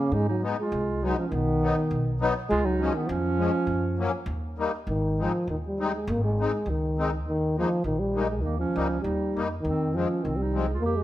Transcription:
Already playing: C#3 A#3
0.12 G#2 G#3 D#4
0.28 F#3 D#4
0.42 G#3 B3 D#4
0.59 G#3 F4
0.72 C2
1.02 F#3 G#3 B3 D#4
1.17 F3 C#4
1.29 B1 D#3
1.33 B3
1.62 F#3 B3 D#4
1.91 B1
2.20 F#3 B3 D#4
2.50 C#2 G#3 F4
2.65 F#3 D#4
2.80 F3 G#3 C#4
2.94 D#3 B3
3.08 F2 F3 C#4
3.38 F3 G#3 C#4
3.67 F#2
3.98 F#3 A#3 C#4
4.26 D#2
4.58 G3 A#3 D#4
4.87 G#1 D#3
5.20 F3 G#3 C4 D#4
5.47 D#2 D#3
5.67 G3
5.79 G#3 C4 D#4
5.95 G#3
6.07 G#1 A#3
6.24 G#3
6.39 G#3 C4 D#4
6.66 C#2 D#3
6.98 G#3 C4 D#4
7.26 D#2 D#3
7.58 F3 G#3 A#3 D#4
7.84 A#1 D#3
7.99 G3
8.15 G#3 A#3 D#4
8.30 G#3
8.42 D#2 D#3 A#3
8.59 F3 C#4
8.75 C#2 G3 A#3 D#4
9.01 D#2 G3 D#4
9.35 F2 G3 A#3 D#4
9.61 F2 D#3 C4
9.95 F3 G#3 C4 C#4
10.23 C2 D#3 C4
10.36 G3
10.42 D#4
10.53 F3 G#3 C4
10.67 G#3
10.73 F4
10.80 F2 A#3
10.85 G4
10.97 G#3

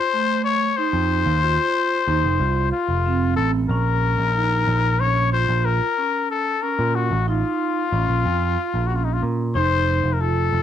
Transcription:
Already playing: C5
0.13 A3
0.44 C#5
0.77 D#4 C5
0.93 F2
1.26 D#2
1.43 F4
2.07 D#2 D#4
2.24 F1
2.40 C2 F4
2.72 F4
2.88 F1
3.06 C4
3.36 A1 A4
3.69 A#1 C#4 A#4
4.18 A#1
4.35 D#4
4.67 A#1
5.00 C#4 C#5
5.32 F4 C5
5.49 A#1
5.65 A#4
5.98 C#4
6.30 A4
6.62 C#4 A#4
6.79 A#2
6.95 F#4
7.11 A1
7.28 D#4 F4
7.92 A1 C#4
8.09 A#1
8.25 F2 F4
8.74 A#1
8.87 C#4 F#4
8.96 F4
9.05 D#4
9.13 F4
9.23 A#2
9.55 F1 D#4 C5
10.04 F1
10.13 A#4
10.20 F4 A4
10.53 F1

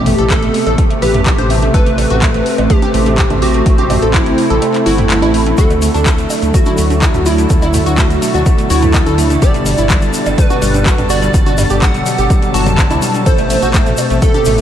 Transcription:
Already playing: A1 B2 C3 A3 G4
0.06 A3, mid tom, open hi-hat
0.18 A1 A4, closed hi-hat
0.30 A3 A4, kick, clap, closed hi-hat
0.43 A3, closed hi-hat
0.54 A3, open hi-hat
0.66 A1 A4, closed hi-hat, high bongo
0.78 A3, kick, closed hi-hat
0.90 A3, closed hi-hat
1.02 A1 G4 B4, open hi-hat
1.14 A3, closed hi-hat, mid tom
1.26 A3, kick, clap, closed hi-hat, high bongo
1.38 A1 C5, closed hi-hat, high conga
1.50 A3, open hi-hat
1.62 A3, closed hi-hat, high conga
1.74 A1 C4 A4 B4, kick, closed hi-hat
1.86 A3, closed hi-hat
1.98 A3, open hi-hat, high bongo
2.10 A1 F#4, closed hi-hat
2.22 A3, kick, clap, closed hi-hat
2.34 A3, closed hi-hat
2.46 open hi-hat
2.58 A1 A3, closed hi-hat, high bongo
2.70 A3 G4, kick, closed hi-hat
2.82 G4, closed hi-hat, high conga
2.94 A1 A3, open hi-hat
3.06 A3, closed hi-hat, high conga
3.18 G4, kick, clap, closed hi-hat
3.30 A1 A3, closed hi-hat, mid tom, high bongo, high conga
3.42 F#4 G4, open hi-hat
3.54 A3, closed hi-hat
3.66 A1 A3, kick, closed hi-hat
3.78 G4, closed hi-hat, high conga
3.90 A3, mid tom, open hi-hat, high bongo
4.02 A1 A4, closed hi-hat
4.14 A3 E4, kick, clap, closed hi-hat
4.26 A3, closed hi-hat
4.38 A3, open hi-hat
4.50 A1 A4, closed hi-hat
4.62 A3, closed hi-hat, high bongo
4.74 A3, clap, closed hi-hat
4.86 G1 E4 F#4, open hi-hat
4.98 A3, closed hi-hat, mid tom
5.10 A3, clap, closed hi-hat
5.22 A1 E4, closed hi-hat, high bongo, high conga
5.34 A3, open hi-hat
5.46 A3, closed hi-hat, high conga
5.58 D2 D3 F#3 F#4 A4 A5, kick, closed hi-hat, shaker
5.70 A3, closed hi-hat, high bongo, shaker
5.82 A3, open hi-hat, shaker
5.94 D2 D4, closed hi-hat, shaker
6.06 A3, kick, clap, closed hi-hat, shaker
6.18 A3, closed hi-hat, shaker
6.30 open hi-hat, high bongo, shaker
6.42 D2 A3, closed hi-hat, shaker
6.54 A3 F#4, kick, closed hi-hat, shaker
6.65 E4, closed hi-hat, high conga, shaker
6.78 D2 A3, open hi-hat, shaker
6.90 A3, closed hi-hat, high conga, shaker
7.02 E4, kick, clap, closed hi-hat, high bongo, shaker
7.14 D2 A3, closed hi-hat, mid tom, high conga, shaker
7.26 E4, open hi-hat, shaker
7.38 A3, closed hi-hat, shaker
7.50 D2 B2 A3, kick, closed hi-hat, shaker
7.62 E4, closed hi-hat, high bongo, high conga, shaker
7.74 A3, mid tom, open hi-hat, shaker
7.86 D2 F#4, closed hi-hat, shaker
7.98 A3 F#4, kick, clap, closed hi-hat, shaker
8.10 A3, closed hi-hat, shaker
8.22 A3, open hi-hat, shaker
8.34 D2 F#4, closed hi-hat, high bongo, shaker
8.46 A3, kick, closed hi-hat, shaker
8.58 A3, closed hi-hat, shaker
8.70 D2 E4 F#4, open hi-hat, shaker
8.82 A3, closed hi-hat, mid tom, shaker
8.94 A3, kick, clap, closed hi-hat, high bongo, shaker
9.06 D2 A4, closed hi-hat, high conga, shaker
9.18 A3, open hi-hat, shaker
9.30 A3, closed hi-hat, high conga, shaker
9.42 G1 G3 G4 D5, kick, closed hi-hat, shaker
9.54 G3, closed hi-hat, shaker
9.66 G3, open hi-hat, high bongo, shaker
9.78 G1 E4, closed hi-hat, shaker
9.89 G3, kick, clap, closed hi-hat, shaker
10.02 G3, closed hi-hat, shaker
10.14 open hi-hat, shaker
10.26 G1 G3, closed hi-hat, high bongo, shaker
10.38 G3 B4, kick, closed hi-hat, shaker
10.50 F#4, closed hi-hat, high conga, shaker
10.62 G1 G3, open hi-hat, shaker
10.74 G3, closed hi-hat, high conga, shaker
10.86 F#4, kick, clap, closed hi-hat, shaker
10.98 G1 G3, closed hi-hat, mid tom, high bongo, high conga, shaker
11.10 F#4 D5, open hi-hat, shaker
11.22 G3, closed hi-hat, shaker
11.34 G1 F#3 G3, kick, closed hi-hat, shaker
11.46 F#4, closed hi-hat, high conga, shaker
11.58 G3, mid tom, open hi-hat, high bongo, shaker
11.70 G1 G4, closed hi-hat, shaker
11.82 G3 F#5, kick, clap, closed hi-hat, shaker
11.94 G3, closed hi-hat, shaker
12.06 G3, open hi-hat, shaker
12.18 G1 G4, closed hi-hat, shaker
12.30 G3, kick, closed hi-hat, high bongo, shaker
12.42 G3, closed hi-hat, shaker
12.54 G1 F#4 A5, open hi-hat, shaker
12.66 G3, closed hi-hat, mid tom, shaker
12.78 G3, kick, clap, closed hi-hat, shaker
12.90 D2 E4, closed hi-hat, high bongo, high conga, shaker
13.02 G3, open hi-hat, shaker
13.14 G3, closed hi-hat, high conga, shaker
13.26 A1 C3 A3 A4 C5, kick, closed hi-hat, ride, shaker
13.38 A3, closed hi-hat, high bongo, shaker
13.50 A3, open hi-hat, ride, shaker
13.62 A1 F#4, closed hi-hat, shaker
13.74 A3, kick, clap, closed hi-hat, ride, shaker
13.86 A3, closed hi-hat, shaker
13.97 open hi-hat, ride, high bongo, shaker
14.10 A1 A3, closed hi-hat, shaker
14.22 A3 A4, kick, closed hi-hat, ride, shaker
14.34 G4, closed hi-hat, high conga, shaker
14.45 A1 A3, open hi-hat, ride, shaker

